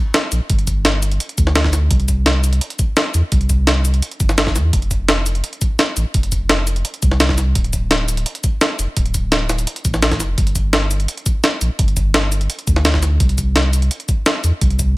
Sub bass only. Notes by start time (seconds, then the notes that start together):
0.32 A#1
0.50 G1
1.38 D2
1.91 C2
3.14 E2
3.32 C2
4.20 G1
4.55 E2
4.73 F1
5.97 A1
6.14 F1
7.03 C2
7.56 D1
8.79 F1
8.97 D1
9.85 A1
10.20 F1
10.38 G1
11.61 A#1
11.79 G1
12.67 D2
13.20 C2
14.44 E2
14.61 C2